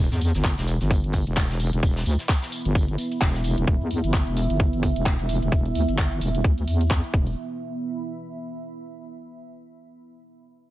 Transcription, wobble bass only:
0.12 0.33 E2 medium
0.35 0.56 G1 medium
0.58 0.79 E1 medium
0.81 1.25 G1 medium
1.27 1.71 E1 medium
1.73 1.81 E1 medium
1.83 2.04 E1 loud
2.06 2.17 D2 medium
2.65 2.97 G1 medium
3.21 3.56 E1 medium
3.58 3.66 E1 medium
3.68 3.79 E1 loud
3.81 4.02 E2 medium
4.04 4.25 G1 loud
4.27 4.48 E1 medium
4.50 4.94 G1 medium
4.96 5.40 E1 loud
5.42 5.51 E1 medium
5.52 5.74 E1 loud
5.75 5.86 D2 medium
5.88 6.20 G1 medium
6.21 6.43 E1 medium
6.44 6.66 D2 loud
6.67 7.02 E2 medium
7.14 7.35 E1 loud

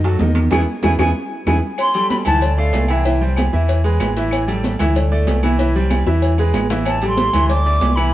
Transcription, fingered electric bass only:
0.00 0.16 F#2 medium
0.20 0.50 E2 medium
0.51 0.64 E2 loud
0.83 0.95 E2 loud
0.99 1.11 E2 loud
1.46 1.59 E2 medium
2.26 2.71 D2 medium
2.73 3.47 C2 loud
3.53 3.97 E2 medium
4.01 4.74 A1 loud
4.80 5.24 D2 loud
5.28 6.01 C2 medium
6.06 6.51 E2 medium
6.54 7.28 A1 loud
7.33 7.78 D2 loud
7.81 8.14 C2 loud

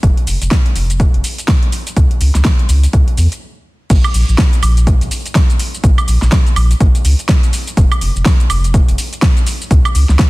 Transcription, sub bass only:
0.03 0.12 F1 loud
0.27 0.37 F1 loud
0.42 0.48 F1 medium
0.76 1.06 F1 loud
1.14 1.21 F1 medium
1.97 2.06 C#2 loud
2.21 2.30 C#2 loud
2.35 2.42 C#2 medium
2.69 2.87 C#2 loud
2.93 3.03 C#2 loud
3.18 3.27 E2 loud
3.90 4.00 A#1 loud
4.14 4.24 A#1 loud
4.29 4.35 A#1 medium
4.63 4.93 A#1 loud
5.01 5.08 A#1 medium
5.84 5.93 A#1 loud
6.08 6.17 A#1 loud
6.22 6.29 A#1 medium
6.56 6.74 A#1 loud
6.80 6.90 A#1 loud
7.05 7.14 C#2 loud
7.77 7.87 F1 loud
8.01 8.11 F1 loud
8.16 8.22 F1 medium
8.50 8.80 F1 loud
8.88 8.95 F1 medium
9.71 9.80 C#2 loud
9.95 10.04 C#2 loud
10.09 10.16 C#2 medium

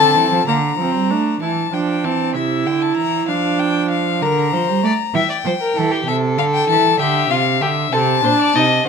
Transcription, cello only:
0.00 0.17 D3 medium
0.16 0.31 E3 medium
0.31 0.47 F3 medium
0.47 0.77 D3 medium
0.79 0.96 F3 medium
0.94 1.12 G3 medium
1.10 1.41 A3 medium
1.41 1.72 E3 medium
1.72 2.06 F3 medium
2.04 2.37 E3 medium
2.35 2.68 C3 medium
2.66 2.97 D3 medium
2.97 3.28 E3 medium
3.28 4.23 F3 medium
4.22 4.54 D3 medium
4.53 4.70 F3 medium
4.68 4.82 G3 medium
4.83 4.91 A3 medium
5.14 5.22 E3 medium
5.45 5.53 F3 medium
5.76 6.06 E3 medium
6.07 6.39 C3 medium
6.38 6.68 D3 medium
6.69 6.99 E3 medium
7.00 7.30 D3 medium
7.30 7.62 C3 medium
7.61 7.92 D3 medium
7.92 8.23 C3 medium
8.24 8.32 A#2 medium
8.55 8.86 C3 medium

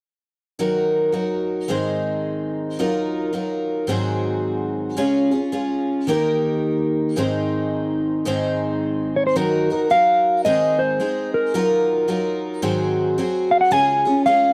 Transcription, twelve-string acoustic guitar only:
0.59 1.14 D#3 medium
0.59 1.11 F#3 soft
0.59 1.13 D#4 soft
0.59 1.12 F#4 medium
0.59 1.13 A#4 medium
1.12 1.68 F#3 soft
1.12 1.69 D#4 soft
1.12 1.69 F#4 soft
1.12 1.69 A#4 soft
1.68 2.78 G#2 medium
1.68 2.78 D#3 medium
1.68 2.78 G#3 medium
1.68 2.79 C4 medium
1.68 2.78 D#4 medium
1.68 2.79 C5 medium
2.79 3.31 F#3 medium
2.79 3.32 D#4 medium
2.79 3.32 F4 medium
2.79 3.33 A#4 medium
3.33 3.87 F#3 soft
3.33 3.88 D#4 soft
3.33 3.88 F4 soft
3.33 3.89 A#4 soft
3.87 4.97 G#2 medium
3.87 4.96 D#3 medium
3.87 4.97 F#3 medium
3.87 4.97 C4 medium
3.87 4.97 F#4 medium
3.87 4.97 G#4 medium
4.97 5.31 C#3 medium
4.97 5.31 G#3 medium
4.97 5.31 C#4 medium
4.97 5.31 F4 medium
4.97 5.30 G#4 medium
5.31 5.51 C#4 soft
5.31 5.52 F4 soft
5.31 5.52 G#4 soft
5.52 6.07 G#3 soft
5.52 6.07 C#4 soft
5.52 6.07 F4 soft
5.52 6.08 G#4 soft
6.07 7.16 D#3 medium
6.07 7.17 A#3 medium
6.07 7.17 D#4 medium
6.07 7.17 G4 medium
6.07 7.18 A#4 medium
7.16 8.24 G#2 medium
7.16 8.25 D#3 medium
7.16 8.26 G#3 medium
7.16 8.26 C4 medium
7.16 8.26 D#4 medium
7.16 8.26 C5 medium
8.25 9.35 G#2 medium
8.25 9.34 D#3 medium
8.25 9.35 G#3 medium
8.25 9.36 C4 medium
8.25 9.35 D#4 medium
8.25 9.36 C5 medium
9.35 9.69 D#3 medium
9.35 9.69 F#3 medium
9.35 9.69 D#4 medium
9.35 9.69 F#4 medium
9.35 9.69 A#4 medium
9.70 9.89 D#4 soft
9.70 9.90 F#4 soft
9.70 9.90 A#4 soft
9.90 10.44 F#3 soft
9.90 10.45 D#4 soft
9.90 10.45 F#4 soft
9.90 10.45 A#4 soft
10.45 10.99 G#2 medium
10.45 11.00 D#3 medium
10.45 10.98 G#3 medium
10.45 10.99 C4 medium
10.45 11.00 D#4 medium
10.45 11.00 G#4 medium
11.00 11.54 G#3 soft
11.00 11.54 C4 soft
11.00 11.54 D#4 soft
11.00 11.55 G#4 soft
11.54 12.07 F#3 medium
11.54 12.07 D#4 medium
11.54 12.08 F4 medium
11.54 12.09 A#4 medium
12.08 12.62 F#3 soft
12.08 12.62 D#4 soft
12.08 12.62 F4 medium
12.08 12.63 A#4 soft
12.62 13.17 G#2 medium
12.62 13.17 D#3 medium
12.62 13.16 F#3 medium
12.62 13.17 C4 medium
12.62 13.17 F#4 medium
12.62 13.18 G#4 medium
13.18 13.71 F#3 soft
13.18 13.71 C4 soft
13.18 13.71 F#4 soft
13.18 13.71 G#4 medium
13.71 14.05 C#3 medium
13.71 14.05 G#3 medium
13.71 14.05 C#4 medium
13.71 14.05 F4 medium
13.71 14.04 G#4 medium
14.05 14.25 C#4 soft
14.05 14.26 F4 soft
14.05 14.26 G#4 soft
14.26 14.53 G#3 soft
14.26 14.53 C#4 soft
14.26 14.53 F4 soft
14.26 14.53 G#4 soft

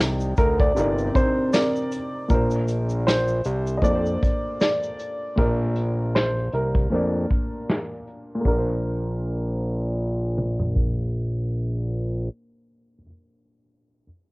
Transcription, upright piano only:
0.38 0.60 A#4 medium
0.60 1.17 D5 medium
1.16 1.55 C5 medium
1.53 2.10 A#4 medium
1.53 2.26 D5 loud
2.30 3.09 A#4 medium
3.07 3.74 C5 loud
3.77 3.84 D#5 medium
3.84 4.60 D5 loud
4.61 5.40 D5 medium
5.38 6.11 A#4 medium
6.15 6.54 C5 medium
6.54 8.03 A#4 medium
8.48 13.00 A#4 medium

